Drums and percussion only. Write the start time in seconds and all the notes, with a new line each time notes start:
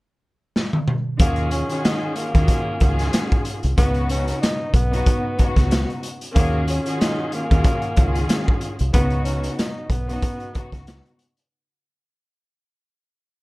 0.56 snare
0.73 high tom
0.88 mid tom
1.19 kick, closed hi-hat
1.36 closed hi-hat
1.51 closed hi-hat
1.69 closed hi-hat
1.85 snare, closed hi-hat
2.16 closed hi-hat
2.35 kick, closed hi-hat
2.48 kick, closed hi-hat
2.80 kick, closed hi-hat
2.99 snare, closed hi-hat
3.13 snare, closed hi-hat
3.31 kick, closed hi-hat
3.45 closed hi-hat
3.63 closed hi-hat
3.78 kick, closed hi-hat
3.94 closed hi-hat
4.09 closed hi-hat
4.28 closed hi-hat
4.43 snare, closed hi-hat
4.74 kick, closed hi-hat
4.93 closed hi-hat
5.06 kick, closed hi-hat
5.39 kick, closed hi-hat
5.56 kick, snare, closed hi-hat
5.71 snare, closed hi-hat
5.90 closed hi-hat
6.03 closed hi-hat
6.21 closed hi-hat
6.36 kick, closed hi-hat
6.67 closed hi-hat
6.86 closed hi-hat
7.01 snare, closed hi-hat
7.32 closed hi-hat
7.51 kick, closed hi-hat
7.64 kick, closed hi-hat
7.82 closed hi-hat
7.96 kick, closed hi-hat
8.15 closed hi-hat
8.29 snare, closed hi-hat
8.48 kick
8.61 closed hi-hat
8.79 closed hi-hat
8.94 kick, closed hi-hat
9.10 closed hi-hat
9.25 closed hi-hat
9.43 closed hi-hat
9.59 snare, closed hi-hat
9.90 kick, closed hi-hat
10.09 closed hi-hat
10.22 kick, closed hi-hat
10.40 closed hi-hat
10.55 kick, closed hi-hat
10.72 kick, snare, closed hi-hat
10.87 snare, closed hi-hat
11.06 closed hi-hat
11.19 closed hi-hat
11.37 closed hi-hat